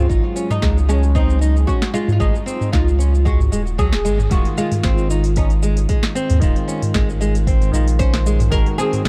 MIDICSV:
0, 0, Header, 1, 7, 480
1, 0, Start_track
1, 0, Tempo, 526316
1, 93, Time_signature, 4, 2, 24, 8
1, 8286, End_track
2, 0, Start_track
2, 0, Title_t, "Oud"
2, 0, Program_c, 0, 24
2, 0, Note_on_c, 0, 65, 106
2, 458, Note_off_c, 0, 65, 0
2, 462, Note_on_c, 0, 63, 92
2, 813, Note_on_c, 0, 61, 93
2, 823, Note_off_c, 0, 63, 0
2, 1048, Note_on_c, 0, 63, 83
2, 1060, Note_off_c, 0, 61, 0
2, 1522, Note_off_c, 0, 63, 0
2, 1525, Note_on_c, 0, 66, 88
2, 1763, Note_off_c, 0, 66, 0
2, 1766, Note_on_c, 0, 65, 95
2, 1926, Note_off_c, 0, 65, 0
2, 1937, Note_on_c, 0, 65, 70
2, 2004, Note_off_c, 0, 65, 0
2, 2008, Note_on_c, 0, 63, 94
2, 2485, Note_off_c, 0, 63, 0
2, 2489, Note_on_c, 0, 65, 95
2, 2968, Note_off_c, 0, 65, 0
2, 2972, Note_on_c, 0, 66, 76
2, 3452, Note_off_c, 0, 66, 0
2, 3455, Note_on_c, 0, 68, 111
2, 3933, Note_off_c, 0, 68, 0
2, 3937, Note_on_c, 0, 66, 102
2, 4171, Note_off_c, 0, 66, 0
2, 4175, Note_on_c, 0, 65, 97
2, 4892, Note_off_c, 0, 65, 0
2, 4896, Note_on_c, 0, 63, 77
2, 5578, Note_off_c, 0, 63, 0
2, 7288, Note_on_c, 0, 72, 106
2, 7763, Note_off_c, 0, 72, 0
2, 7766, Note_on_c, 0, 70, 108
2, 8005, Note_off_c, 0, 70, 0
2, 8008, Note_on_c, 0, 68, 99
2, 8286, Note_off_c, 0, 68, 0
2, 8286, End_track
3, 0, Start_track
3, 0, Title_t, "Nylon-string guitar"
3, 0, Program_c, 1, 24
3, 85, Note_on_c, 1, 63, 80
3, 213, Note_off_c, 1, 63, 0
3, 327, Note_on_c, 1, 61, 70
3, 453, Note_off_c, 1, 61, 0
3, 565, Note_on_c, 1, 56, 89
3, 693, Note_off_c, 1, 56, 0
3, 808, Note_on_c, 1, 56, 97
3, 934, Note_off_c, 1, 56, 0
3, 1048, Note_on_c, 1, 60, 99
3, 1279, Note_off_c, 1, 60, 0
3, 1288, Note_on_c, 1, 63, 75
3, 1414, Note_off_c, 1, 63, 0
3, 1529, Note_on_c, 1, 61, 81
3, 1654, Note_off_c, 1, 61, 0
3, 1766, Note_on_c, 1, 56, 101
3, 1893, Note_off_c, 1, 56, 0
3, 2005, Note_on_c, 1, 56, 99
3, 2132, Note_off_c, 1, 56, 0
3, 2244, Note_on_c, 1, 60, 94
3, 2477, Note_off_c, 1, 60, 0
3, 2483, Note_on_c, 1, 63, 75
3, 2612, Note_off_c, 1, 63, 0
3, 2724, Note_on_c, 1, 61, 70
3, 2852, Note_off_c, 1, 61, 0
3, 2966, Note_on_c, 1, 56, 98
3, 3093, Note_off_c, 1, 56, 0
3, 3210, Note_on_c, 1, 56, 75
3, 3286, Note_off_c, 1, 56, 0
3, 3450, Note_on_c, 1, 54, 78
3, 3575, Note_off_c, 1, 54, 0
3, 3691, Note_on_c, 1, 56, 96
3, 3809, Note_off_c, 1, 56, 0
3, 3931, Note_on_c, 1, 56, 97
3, 4055, Note_off_c, 1, 56, 0
3, 4172, Note_on_c, 1, 56, 101
3, 4296, Note_off_c, 1, 56, 0
3, 4413, Note_on_c, 1, 60, 98
3, 4642, Note_off_c, 1, 60, 0
3, 4655, Note_on_c, 1, 63, 77
3, 4777, Note_off_c, 1, 63, 0
3, 4894, Note_on_c, 1, 61, 85
3, 5017, Note_off_c, 1, 61, 0
3, 5130, Note_on_c, 1, 56, 97
3, 5255, Note_off_c, 1, 56, 0
3, 5370, Note_on_c, 1, 56, 98
3, 5495, Note_off_c, 1, 56, 0
3, 5611, Note_on_c, 1, 60, 105
3, 5841, Note_off_c, 1, 60, 0
3, 5850, Note_on_c, 1, 63, 79
3, 5975, Note_off_c, 1, 63, 0
3, 6089, Note_on_c, 1, 61, 74
3, 6214, Note_off_c, 1, 61, 0
3, 6332, Note_on_c, 1, 56, 96
3, 6456, Note_off_c, 1, 56, 0
3, 6572, Note_on_c, 1, 56, 99
3, 6696, Note_off_c, 1, 56, 0
3, 6813, Note_on_c, 1, 60, 98
3, 7042, Note_off_c, 1, 60, 0
3, 7053, Note_on_c, 1, 63, 76
3, 7177, Note_off_c, 1, 63, 0
3, 7292, Note_on_c, 1, 61, 81
3, 7416, Note_off_c, 1, 61, 0
3, 7536, Note_on_c, 1, 56, 96
3, 7658, Note_off_c, 1, 56, 0
3, 7775, Note_on_c, 1, 56, 99
3, 7897, Note_off_c, 1, 56, 0
3, 8013, Note_on_c, 1, 60, 93
3, 8242, Note_off_c, 1, 60, 0
3, 8252, Note_on_c, 1, 63, 75
3, 8286, Note_off_c, 1, 63, 0
3, 8286, End_track
4, 0, Start_track
4, 0, Title_t, "Tine electric piano"
4, 0, Program_c, 2, 4
4, 3920, Note_on_c, 2, 51, 91
4, 3928, Note_on_c, 2, 56, 83
4, 3955, Note_on_c, 2, 65, 100
4, 5820, Note_off_c, 2, 51, 0
4, 5824, Note_off_c, 2, 56, 0
4, 5833, Note_on_c, 2, 51, 98
4, 5838, Note_off_c, 2, 65, 0
4, 5845, Note_on_c, 2, 56, 85
4, 5868, Note_on_c, 2, 65, 106
4, 7017, Note_off_c, 2, 51, 0
4, 7022, Note_off_c, 2, 56, 0
4, 7034, Note_off_c, 2, 65, 0
4, 7035, Note_on_c, 2, 51, 86
4, 7048, Note_on_c, 2, 56, 80
4, 7069, Note_on_c, 2, 65, 94
4, 7738, Note_off_c, 2, 51, 0
4, 7744, Note_off_c, 2, 56, 0
4, 7754, Note_on_c, 2, 51, 90
4, 7755, Note_off_c, 2, 65, 0
4, 7765, Note_on_c, 2, 56, 84
4, 7788, Note_on_c, 2, 66, 101
4, 8286, Note_off_c, 2, 51, 0
4, 8286, Note_off_c, 2, 56, 0
4, 8286, Note_off_c, 2, 66, 0
4, 8286, End_track
5, 0, Start_track
5, 0, Title_t, "Analog synth pad"
5, 0, Program_c, 3, 89
5, 0, Note_on_c, 3, 54, 84
5, 85, Note_on_c, 3, 56, 73
5, 3893, Note_off_c, 3, 56, 0
5, 3896, Note_off_c, 3, 54, 0
5, 8286, End_track
6, 0, Start_track
6, 0, Title_t, "Sub bass"
6, 0, Program_c, 4, 38
6, 89, Note_on_c, 4, 32, 99
6, 201, Note_off_c, 4, 32, 0
6, 568, Note_on_c, 4, 37, 86
6, 1504, Note_off_c, 4, 37, 0
6, 1898, Note_on_c, 4, 44, 84
6, 1994, Note_off_c, 4, 44, 0
6, 2011, Note_on_c, 4, 32, 99
6, 2122, Note_off_c, 4, 32, 0
6, 2491, Note_on_c, 4, 37, 81
6, 3185, Note_off_c, 4, 37, 0
6, 3208, Note_on_c, 4, 27, 80
6, 3446, Note_off_c, 4, 27, 0
6, 3451, Note_on_c, 4, 37, 99
6, 3562, Note_off_c, 4, 37, 0
6, 3580, Note_on_c, 4, 27, 78
6, 3688, Note_on_c, 4, 32, 93
6, 3702, Note_off_c, 4, 27, 0
6, 3897, Note_off_c, 4, 32, 0
6, 3930, Note_on_c, 4, 27, 100
6, 4042, Note_off_c, 4, 27, 0
6, 4413, Note_on_c, 4, 32, 87
6, 5346, Note_off_c, 4, 32, 0
6, 5744, Note_on_c, 4, 39, 88
6, 5837, Note_off_c, 4, 39, 0
6, 5854, Note_on_c, 4, 27, 107
6, 5964, Note_off_c, 4, 27, 0
6, 6335, Note_on_c, 4, 32, 84
6, 7027, Note_off_c, 4, 32, 0
6, 7046, Note_on_c, 4, 34, 81
6, 7742, Note_off_c, 4, 34, 0
6, 7771, Note_on_c, 4, 32, 105
6, 7882, Note_off_c, 4, 32, 0
6, 8251, Note_on_c, 4, 37, 82
6, 8286, Note_off_c, 4, 37, 0
6, 8286, End_track
7, 0, Start_track
7, 0, Title_t, "Drums"
7, 90, Note_on_c, 9, 36, 95
7, 95, Note_on_c, 9, 82, 42
7, 181, Note_off_c, 9, 36, 0
7, 186, Note_off_c, 9, 82, 0
7, 332, Note_on_c, 9, 82, 74
7, 423, Note_off_c, 9, 82, 0
7, 459, Note_on_c, 9, 45, 80
7, 465, Note_on_c, 9, 82, 29
7, 550, Note_off_c, 9, 45, 0
7, 556, Note_off_c, 9, 82, 0
7, 569, Note_on_c, 9, 38, 68
7, 570, Note_on_c, 9, 36, 105
7, 575, Note_on_c, 9, 82, 37
7, 660, Note_off_c, 9, 38, 0
7, 661, Note_off_c, 9, 36, 0
7, 666, Note_off_c, 9, 82, 0
7, 709, Note_on_c, 9, 82, 30
7, 800, Note_off_c, 9, 82, 0
7, 816, Note_on_c, 9, 82, 76
7, 907, Note_off_c, 9, 82, 0
7, 941, Note_on_c, 9, 82, 31
7, 1032, Note_off_c, 9, 82, 0
7, 1050, Note_on_c, 9, 36, 96
7, 1053, Note_on_c, 9, 82, 41
7, 1141, Note_off_c, 9, 36, 0
7, 1144, Note_off_c, 9, 82, 0
7, 1186, Note_on_c, 9, 82, 29
7, 1277, Note_off_c, 9, 82, 0
7, 1295, Note_on_c, 9, 82, 69
7, 1386, Note_off_c, 9, 82, 0
7, 1428, Note_on_c, 9, 82, 33
7, 1519, Note_off_c, 9, 82, 0
7, 1530, Note_on_c, 9, 36, 86
7, 1540, Note_on_c, 9, 82, 39
7, 1621, Note_off_c, 9, 36, 0
7, 1631, Note_off_c, 9, 82, 0
7, 1660, Note_on_c, 9, 38, 71
7, 1666, Note_on_c, 9, 82, 28
7, 1751, Note_off_c, 9, 38, 0
7, 1757, Note_off_c, 9, 82, 0
7, 1776, Note_on_c, 9, 82, 79
7, 1867, Note_off_c, 9, 82, 0
7, 1899, Note_on_c, 9, 45, 76
7, 1905, Note_on_c, 9, 82, 31
7, 1990, Note_off_c, 9, 45, 0
7, 1997, Note_off_c, 9, 82, 0
7, 2011, Note_on_c, 9, 36, 100
7, 2017, Note_on_c, 9, 82, 45
7, 2102, Note_off_c, 9, 36, 0
7, 2108, Note_off_c, 9, 82, 0
7, 2145, Note_on_c, 9, 82, 28
7, 2236, Note_off_c, 9, 82, 0
7, 2257, Note_on_c, 9, 82, 74
7, 2349, Note_off_c, 9, 82, 0
7, 2380, Note_on_c, 9, 45, 78
7, 2386, Note_on_c, 9, 82, 29
7, 2471, Note_off_c, 9, 45, 0
7, 2477, Note_off_c, 9, 82, 0
7, 2491, Note_on_c, 9, 36, 103
7, 2493, Note_on_c, 9, 38, 67
7, 2500, Note_on_c, 9, 82, 37
7, 2582, Note_off_c, 9, 36, 0
7, 2585, Note_off_c, 9, 38, 0
7, 2591, Note_off_c, 9, 82, 0
7, 2627, Note_on_c, 9, 82, 29
7, 2718, Note_off_c, 9, 82, 0
7, 2738, Note_on_c, 9, 82, 78
7, 2830, Note_off_c, 9, 82, 0
7, 2870, Note_on_c, 9, 82, 33
7, 2961, Note_off_c, 9, 82, 0
7, 2971, Note_on_c, 9, 36, 101
7, 2978, Note_on_c, 9, 82, 39
7, 3063, Note_off_c, 9, 36, 0
7, 3069, Note_off_c, 9, 82, 0
7, 3102, Note_on_c, 9, 45, 63
7, 3108, Note_on_c, 9, 82, 29
7, 3193, Note_off_c, 9, 45, 0
7, 3200, Note_off_c, 9, 82, 0
7, 3216, Note_on_c, 9, 82, 70
7, 3307, Note_off_c, 9, 82, 0
7, 3345, Note_on_c, 9, 82, 33
7, 3436, Note_off_c, 9, 82, 0
7, 3453, Note_on_c, 9, 36, 93
7, 3457, Note_on_c, 9, 82, 39
7, 3544, Note_off_c, 9, 36, 0
7, 3549, Note_off_c, 9, 82, 0
7, 3580, Note_on_c, 9, 38, 76
7, 3587, Note_on_c, 9, 82, 28
7, 3672, Note_off_c, 9, 38, 0
7, 3678, Note_off_c, 9, 82, 0
7, 3698, Note_on_c, 9, 82, 76
7, 3789, Note_off_c, 9, 82, 0
7, 3822, Note_on_c, 9, 45, 76
7, 3828, Note_on_c, 9, 82, 32
7, 3913, Note_off_c, 9, 45, 0
7, 3919, Note_off_c, 9, 82, 0
7, 3930, Note_on_c, 9, 46, 57
7, 3933, Note_on_c, 9, 36, 104
7, 3936, Note_on_c, 9, 82, 45
7, 4021, Note_off_c, 9, 46, 0
7, 4024, Note_off_c, 9, 36, 0
7, 4027, Note_off_c, 9, 82, 0
7, 4061, Note_on_c, 9, 46, 31
7, 4152, Note_off_c, 9, 46, 0
7, 4175, Note_on_c, 9, 82, 81
7, 4266, Note_off_c, 9, 82, 0
7, 4301, Note_on_c, 9, 45, 76
7, 4301, Note_on_c, 9, 46, 49
7, 4307, Note_on_c, 9, 82, 33
7, 4392, Note_off_c, 9, 45, 0
7, 4392, Note_off_c, 9, 46, 0
7, 4399, Note_off_c, 9, 82, 0
7, 4409, Note_on_c, 9, 38, 73
7, 4409, Note_on_c, 9, 46, 54
7, 4415, Note_on_c, 9, 36, 106
7, 4416, Note_on_c, 9, 82, 43
7, 4501, Note_off_c, 9, 38, 0
7, 4501, Note_off_c, 9, 46, 0
7, 4506, Note_off_c, 9, 36, 0
7, 4507, Note_off_c, 9, 82, 0
7, 4544, Note_on_c, 9, 82, 31
7, 4635, Note_off_c, 9, 82, 0
7, 4655, Note_on_c, 9, 82, 86
7, 4746, Note_off_c, 9, 82, 0
7, 4777, Note_on_c, 9, 46, 44
7, 4783, Note_on_c, 9, 82, 33
7, 4868, Note_off_c, 9, 46, 0
7, 4875, Note_off_c, 9, 82, 0
7, 4888, Note_on_c, 9, 46, 56
7, 4894, Note_on_c, 9, 82, 42
7, 4895, Note_on_c, 9, 36, 107
7, 4979, Note_off_c, 9, 46, 0
7, 4986, Note_off_c, 9, 36, 0
7, 4986, Note_off_c, 9, 82, 0
7, 5017, Note_on_c, 9, 46, 32
7, 5023, Note_on_c, 9, 82, 31
7, 5108, Note_off_c, 9, 46, 0
7, 5114, Note_off_c, 9, 82, 0
7, 5133, Note_on_c, 9, 82, 69
7, 5224, Note_off_c, 9, 82, 0
7, 5261, Note_on_c, 9, 46, 48
7, 5267, Note_on_c, 9, 82, 35
7, 5352, Note_off_c, 9, 46, 0
7, 5358, Note_off_c, 9, 82, 0
7, 5371, Note_on_c, 9, 46, 57
7, 5375, Note_on_c, 9, 36, 100
7, 5377, Note_on_c, 9, 82, 41
7, 5462, Note_off_c, 9, 46, 0
7, 5466, Note_off_c, 9, 36, 0
7, 5468, Note_off_c, 9, 82, 0
7, 5498, Note_on_c, 9, 38, 79
7, 5498, Note_on_c, 9, 46, 31
7, 5505, Note_on_c, 9, 82, 30
7, 5590, Note_off_c, 9, 38, 0
7, 5590, Note_off_c, 9, 46, 0
7, 5596, Note_off_c, 9, 82, 0
7, 5619, Note_on_c, 9, 82, 83
7, 5710, Note_off_c, 9, 82, 0
7, 5742, Note_on_c, 9, 45, 80
7, 5742, Note_on_c, 9, 46, 45
7, 5749, Note_on_c, 9, 82, 35
7, 5834, Note_off_c, 9, 45, 0
7, 5834, Note_off_c, 9, 46, 0
7, 5840, Note_off_c, 9, 82, 0
7, 5852, Note_on_c, 9, 46, 57
7, 5854, Note_on_c, 9, 36, 112
7, 5858, Note_on_c, 9, 82, 49
7, 5943, Note_off_c, 9, 46, 0
7, 5946, Note_off_c, 9, 36, 0
7, 5949, Note_off_c, 9, 82, 0
7, 5984, Note_on_c, 9, 46, 32
7, 6075, Note_off_c, 9, 46, 0
7, 6098, Note_on_c, 9, 82, 78
7, 6189, Note_off_c, 9, 82, 0
7, 6224, Note_on_c, 9, 45, 75
7, 6224, Note_on_c, 9, 46, 46
7, 6230, Note_on_c, 9, 82, 36
7, 6315, Note_off_c, 9, 45, 0
7, 6315, Note_off_c, 9, 46, 0
7, 6322, Note_off_c, 9, 82, 0
7, 6332, Note_on_c, 9, 38, 74
7, 6332, Note_on_c, 9, 46, 51
7, 6334, Note_on_c, 9, 36, 113
7, 6339, Note_on_c, 9, 82, 44
7, 6424, Note_off_c, 9, 38, 0
7, 6424, Note_off_c, 9, 46, 0
7, 6425, Note_off_c, 9, 36, 0
7, 6430, Note_off_c, 9, 82, 0
7, 6471, Note_on_c, 9, 82, 32
7, 6563, Note_off_c, 9, 82, 0
7, 6579, Note_on_c, 9, 82, 81
7, 6671, Note_off_c, 9, 82, 0
7, 6704, Note_on_c, 9, 46, 43
7, 6710, Note_on_c, 9, 82, 34
7, 6795, Note_off_c, 9, 46, 0
7, 6802, Note_off_c, 9, 82, 0
7, 6812, Note_on_c, 9, 36, 112
7, 6816, Note_on_c, 9, 46, 56
7, 6823, Note_on_c, 9, 82, 46
7, 6904, Note_off_c, 9, 36, 0
7, 6907, Note_off_c, 9, 46, 0
7, 6914, Note_off_c, 9, 82, 0
7, 6946, Note_on_c, 9, 45, 56
7, 6946, Note_on_c, 9, 46, 31
7, 6952, Note_on_c, 9, 82, 31
7, 7037, Note_off_c, 9, 45, 0
7, 7037, Note_off_c, 9, 46, 0
7, 7044, Note_off_c, 9, 82, 0
7, 7060, Note_on_c, 9, 82, 73
7, 7151, Note_off_c, 9, 82, 0
7, 7183, Note_on_c, 9, 46, 50
7, 7189, Note_on_c, 9, 82, 37
7, 7274, Note_off_c, 9, 46, 0
7, 7281, Note_off_c, 9, 82, 0
7, 7291, Note_on_c, 9, 46, 51
7, 7292, Note_on_c, 9, 36, 103
7, 7297, Note_on_c, 9, 82, 45
7, 7382, Note_off_c, 9, 46, 0
7, 7384, Note_off_c, 9, 36, 0
7, 7388, Note_off_c, 9, 82, 0
7, 7420, Note_on_c, 9, 38, 79
7, 7420, Note_on_c, 9, 46, 31
7, 7426, Note_on_c, 9, 82, 31
7, 7511, Note_off_c, 9, 38, 0
7, 7511, Note_off_c, 9, 46, 0
7, 7518, Note_off_c, 9, 82, 0
7, 7536, Note_on_c, 9, 82, 88
7, 7627, Note_off_c, 9, 82, 0
7, 7662, Note_on_c, 9, 45, 81
7, 7662, Note_on_c, 9, 46, 45
7, 7669, Note_on_c, 9, 82, 33
7, 7753, Note_off_c, 9, 45, 0
7, 7753, Note_off_c, 9, 46, 0
7, 7760, Note_off_c, 9, 82, 0
7, 7771, Note_on_c, 9, 46, 51
7, 7773, Note_on_c, 9, 36, 112
7, 7777, Note_on_c, 9, 82, 47
7, 7862, Note_off_c, 9, 46, 0
7, 7864, Note_off_c, 9, 36, 0
7, 7868, Note_off_c, 9, 82, 0
7, 7901, Note_on_c, 9, 46, 29
7, 7992, Note_off_c, 9, 46, 0
7, 8017, Note_on_c, 9, 82, 87
7, 8108, Note_off_c, 9, 82, 0
7, 8144, Note_on_c, 9, 45, 72
7, 8144, Note_on_c, 9, 46, 41
7, 8150, Note_on_c, 9, 82, 38
7, 8235, Note_off_c, 9, 45, 0
7, 8235, Note_off_c, 9, 46, 0
7, 8241, Note_off_c, 9, 82, 0
7, 8253, Note_on_c, 9, 36, 108
7, 8257, Note_on_c, 9, 38, 76
7, 8257, Note_on_c, 9, 46, 53
7, 8286, Note_off_c, 9, 36, 0
7, 8286, Note_off_c, 9, 38, 0
7, 8286, Note_off_c, 9, 46, 0
7, 8286, End_track
0, 0, End_of_file